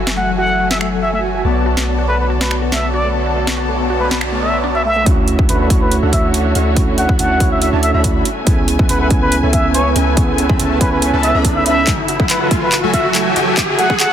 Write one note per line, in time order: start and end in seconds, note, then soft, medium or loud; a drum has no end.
0.00 1.43 F#1 medium
0.00 1.41 E3 medium
0.00 1.42 F#3 medium
0.00 1.41 A3 medium
0.00 1.41 F#4 medium
0.00 1.42 F#4 medium
0.00 1.42 A4 medium
0.00 1.42 E5 medium
0.00 1.42 G#5 medium
0.07 0.11 F#4 medium
0.07 snare medium
0.17 0.22 A3 medium
0.17 0.32 F#5 medium
0.38 0.43 F#4 medium
0.38 0.68 F#5 medium
0.49 0.52 A3 medium
0.71 0.75 F#4 medium
0.71 0.77 E5 medium
0.71 snare medium
0.81 0.86 A3 medium
0.81 0.88 E5 medium
0.81 finger snap medium
1.02 1.07 F#4 medium
1.02 1.09 E5 medium
1.13 1.16 A3 medium
1.13 1.20 E5 medium
1.35 1.39 F#4 medium
1.45 5.04 B1 medium
1.45 5.03 D3 medium
1.45 1.49 A3 medium
1.45 5.03 B3 medium
1.45 4.83 B3 medium
1.45 4.83 F#4 medium
1.45 5.03 A4 medium
1.45 4.83 C#5 medium
1.45 4.83 D5 medium
1.45 4.83 A5 medium
1.66 1.71 F#4 medium
1.77 1.80 A3 medium
1.77 snare medium
1.98 2.03 F#4 medium
2.09 2.13 A3 medium
2.09 2.16 B4 medium
2.20 2.26 B4 medium
2.30 2.35 F#4 medium
2.41 2.44 A3 medium
2.41 2.55 B4 medium
2.41 snare medium
2.51 finger snap medium
2.62 2.67 F#4 medium
2.72 2.77 A3 medium
2.72 2.87 E5 medium
2.72 snare medium
2.94 2.98 F#4 medium
2.94 3.08 D5 medium
3.05 3.07 A3 medium
3.26 3.30 F#4 medium
3.36 3.41 A3 medium
3.36 noise sweep medium
3.47 snare medium
3.58 3.62 F#4 medium
3.69 3.71 A3 medium
3.90 3.94 F#4 medium
4.00 4.05 A3 medium
4.00 4.07 B4 medium
4.11 4.18 B4 medium
4.11 snare medium
4.21 4.26 F#4 medium
4.21 finger snap medium
4.32 4.35 A3 medium
4.42 4.45 A3 medium
4.42 4.57 E5 medium
4.54 4.58 B3 loud
4.64 4.71 D4 loud
4.75 4.83 E5 medium
4.85 4.90 A3 medium
4.85 5.06 E5 medium
4.96 5.03 A3 medium
5.04 5.37 D2 loud
5.04 5.67 A3 medium
5.04 5.67 C#4 medium
5.04 5.18 D4 loud
5.04 5.68 E4 medium
5.04 5.69 F#4 medium
5.04 5.18 A4 medium
5.04 5.18 C#5 medium
5.04 5.18 E5 medium
5.04 5.18 F#5 loud
5.04 kick loud
5.04 closed hi-hat medium
5.04 riser medium
5.28 closed hi-hat medium
5.39 5.46 D4 medium
5.39 5.46 A4 medium
5.39 5.46 C#5 medium
5.39 5.46 E5 medium
5.39 5.46 F#5 medium
5.39 kick loud
5.49 5.68 D2 medium
5.49 5.68 D4 medium
5.49 5.68 A4 medium
5.49 5.56 B4 medium
5.49 5.68 C#5 medium
5.49 5.68 E5 medium
5.49 5.68 F#5 medium
5.49 closed hi-hat medium
5.60 5.67 B4 medium
5.68 6.73 A3 medium
5.68 5.88 D4 medium
5.68 6.74 E4 medium
5.68 6.75 F#4 medium
5.68 5.88 A4 medium
5.68 6.74 C#5 medium
5.68 5.88 C#5 medium
5.68 5.88 E5 medium
5.68 5.88 F#5 medium
5.68 kick loud
5.68 closed hi-hat medium
5.81 5.95 B4 medium
5.92 closed hi-hat medium
6.03 6.53 D2 medium
6.03 6.53 D4 medium
6.03 6.53 A4 medium
6.03 6.53 C#5 medium
6.03 6.53 E5 medium
6.03 6.53 F#5 medium
6.13 6.27 E5 medium
6.13 kick medium
6.13 closed hi-hat medium
6.34 closed hi-hat medium
6.55 7.07 D2 medium
6.55 7.06 D4 medium
6.55 7.06 A4 medium
6.55 7.06 C#5 medium
6.55 7.06 E5 medium
6.55 7.06 F#5 medium
6.55 closed hi-hat medium
6.75 7.37 A3 medium
6.75 7.38 C#4 medium
6.75 7.38 E4 medium
6.75 kick loud
6.75 closed hi-hat medium
6.79 7.39 F#4 medium
6.98 7.12 F#5 medium
6.98 closed hi-hat medium
7.09 7.17 D2 loud
7.09 7.18 D4 medium
7.09 7.18 A4 medium
7.09 7.18 C#5 medium
7.09 7.18 E5 medium
7.09 7.18 B5 loud
7.09 kick loud
7.19 7.38 D2 loud
7.19 7.38 D4 medium
7.19 7.38 A4 medium
7.19 7.38 C#5 medium
7.19 7.38 E5 medium
7.19 7.49 F#5 medium
7.19 7.38 A5 medium
7.19 closed hi-hat medium
7.38 7.71 D2 medium
7.38 8.23 A3 medium
7.38 7.70 D4 medium
7.38 8.25 E4 medium
7.38 8.25 F#4 medium
7.38 7.70 A4 medium
7.38 8.24 C#5 medium
7.38 7.70 C#5 medium
7.38 7.70 E5 medium
7.38 7.70 F#5 medium
7.38 kick loud
7.38 closed hi-hat medium
7.52 7.58 E5 medium
7.62 7.69 E5 medium
7.62 closed hi-hat medium
7.73 7.92 D2 loud
7.73 7.91 D4 medium
7.73 7.91 A4 medium
7.73 7.91 C#5 medium
7.73 7.91 E5 medium
7.73 7.91 A5 loud
7.83 7.90 E5 medium
7.83 closed hi-hat medium
7.94 8.22 D2 medium
7.94 8.24 D4 medium
7.94 8.24 A4 medium
7.94 8.24 C#5 medium
7.94 8.01 E5 medium
7.94 8.24 E5 medium
7.94 8.24 B5 medium
8.04 kick medium
8.04 closed hi-hat medium
8.25 11.84 C#3 medium
8.25 14.13 A3 medium
8.25 11.84 G#5 medium
8.25 closed hi-hat medium
8.45 8.77 C#2 loud
8.45 9.07 B3 medium
8.45 9.08 C#4 medium
8.45 8.59 C#4 loud
8.45 9.09 E4 medium
8.45 9.09 G#4 medium
8.45 8.59 A4 medium
8.45 8.59 B4 medium
8.45 8.59 E5 medium
8.45 8.59 G#5 loud
8.45 kick loud
8.45 closed hi-hat medium
8.68 closed hi-hat medium
8.79 8.87 C#4 medium
8.79 8.87 A4 medium
8.79 8.87 B4 medium
8.79 8.87 E5 medium
8.79 8.87 F#5 medium
8.79 kick loud
8.89 9.09 C#2 medium
8.89 9.08 C#4 medium
8.89 9.08 A4 medium
8.89 8.96 B4 medium
8.89 9.08 B4 medium
8.89 9.08 E5 medium
8.89 9.08 F#5 medium
8.89 closed hi-hat medium
9.01 9.07 B4 medium
9.09 9.41 C#2 medium
9.09 10.14 B3 medium
9.09 10.14 C#4 medium
9.09 9.29 C#4 medium
9.09 10.15 E4 medium
9.09 9.29 A4 medium
9.09 9.29 B4 medium
9.09 9.29 E5 medium
9.09 9.29 G#5 medium
9.09 kick loud
9.09 closed hi-hat medium
9.13 10.16 G#5 medium
9.22 9.36 B4 medium
9.32 closed hi-hat medium
9.43 9.94 C#2 medium
9.43 9.93 C#4 medium
9.43 9.93 A4 medium
9.43 9.93 B4 medium
9.43 9.93 E5 medium
9.43 9.93 G#5 medium
9.53 9.68 E5 medium
9.53 kick medium
9.53 closed hi-hat medium
9.74 9.89 C#5 medium
9.74 closed hi-hat medium
9.96 10.47 C#2 medium
9.96 10.47 C#4 medium
9.96 10.47 A4 medium
9.96 10.47 B4 medium
9.96 10.47 E5 medium
9.96 10.47 G#5 medium
9.96 closed hi-hat medium
10.15 10.77 B3 medium
10.15 10.78 C#4 medium
10.15 10.79 E4 medium
10.15 kick loud
10.15 closed hi-hat medium
10.19 10.79 G#4 medium
10.38 closed hi-hat medium
10.49 10.58 C#4 loud
10.49 10.58 A4 medium
10.49 10.58 B4 medium
10.49 10.58 E5 medium
10.49 10.58 B5 loud
10.49 kick loud
10.60 10.79 C#2 loud
10.60 10.78 C#4 medium
10.60 10.78 A4 medium
10.60 10.78 B4 medium
10.60 10.78 E5 medium
10.60 10.78 A5 medium
10.60 closed hi-hat medium
10.79 11.84 B3 medium
10.79 11.84 C#4 medium
10.79 11.11 C#4 medium
10.79 11.85 E4 medium
10.79 11.11 A4 medium
10.79 10.88 B4 medium
10.79 11.11 B4 medium
10.79 11.11 E5 medium
10.79 11.11 G#5 medium
10.79 kick loud
10.79 closed hi-hat medium
10.83 11.86 G#5 medium
10.92 10.98 B4 medium
11.02 closed hi-hat medium
11.13 11.32 C#2 loud
11.13 11.31 C#4 medium
11.13 11.31 A4 medium
11.13 11.31 B4 medium
11.13 11.31 E5 medium
11.13 11.31 A5 loud
11.23 11.38 E5 medium
11.23 closed hi-hat medium
11.35 11.85 C#2 medium
11.35 11.85 C#4 medium
11.35 11.85 A4 medium
11.35 11.85 B4 medium
11.35 11.85 E5 medium
11.35 11.85 B5 medium
11.45 kick medium
11.45 closed hi-hat medium
11.56 11.64 E5 medium
11.66 11.92 E5 medium
11.66 closed hi-hat medium
11.87 12.17 F#1 loud
11.87 14.13 E3 medium
11.87 11.99 F#3 loud
11.87 11.92 A3 medium
11.87 11.99 F#4 medium
11.87 14.13 F#4 medium
11.87 11.99 A4 medium
11.87 11.99 E5 medium
11.87 11.99 G#5 loud
11.87 kick loud
11.87 clap soft
11.87 closed hi-hat medium
12.08 12.13 F#4 medium
12.08 closed hi-hat medium
12.20 12.28 F#1 loud
12.20 12.27 F#3 medium
12.20 12.22 A3 medium
12.20 12.27 F#4 medium
12.20 12.27 A4 medium
12.20 12.27 E5 medium
12.20 12.27 F#5 medium
12.20 kick loud
12.30 12.49 F#1 medium
12.30 12.49 F#3 medium
12.30 12.49 F#4 medium
12.30 12.49 A4 medium
12.30 12.37 B4 medium
12.30 12.49 E5 medium
12.30 12.49 F#5 medium
12.30 clap medium
12.30 closed hi-hat medium
12.41 12.45 F#4 medium
12.41 12.48 B4 medium
12.51 12.81 F#1 loud
12.51 12.69 F#3 medium
12.51 12.56 A3 medium
12.51 12.69 F#4 medium
12.51 12.69 A4 medium
12.51 12.69 E5 medium
12.51 12.69 G#5 medium
12.51 kick loud
12.51 closed hi-hat medium
12.62 12.76 B4 medium
12.72 12.77 F#4 medium
12.72 clap medium
12.72 closed hi-hat medium
12.83 13.34 F#1 loud
12.83 13.34 F#3 medium
12.83 12.86 A3 medium
12.83 13.34 F#4 medium
12.83 13.34 A4 medium
12.83 13.34 E5 medium
12.83 13.34 G#5 loud
12.94 13.08 E5 medium
12.94 kick medium
12.94 closed hi-hat medium
13.05 13.09 F#4 medium
13.15 13.20 A3 medium
13.15 clap medium
13.15 closed hi-hat medium
13.36 13.88 F#1 medium
13.36 13.87 F#3 medium
13.36 13.41 F#4 medium
13.36 13.87 F#4 medium
13.36 13.87 A4 medium
13.36 13.87 E5 medium
13.36 13.87 G#5 medium
13.36 closed hi-hat medium
13.47 13.50 A3 medium
13.57 kick loud
13.57 clap medium
13.57 closed hi-hat medium
13.69 13.73 F#4 medium
13.79 13.83 A3 medium
13.79 13.93 F#5 loud
13.79 closed hi-hat medium
13.90 13.98 F#1 medium
13.90 13.98 F#3 loud
13.90 13.98 F#4 medium
13.90 13.98 A4 medium
13.90 13.98 E5 medium
13.90 13.98 B5 loud
13.90 kick loud
14.00 14.13 F#1 medium
14.00 14.13 F#3 medium
14.00 14.05 F#4 medium
14.00 14.13 F#4 medium
14.00 14.13 A4 medium
14.00 14.13 E5 medium
14.00 14.13 F#5 medium
14.00 14.13 A5 medium
14.00 clap medium
14.00 closed hi-hat medium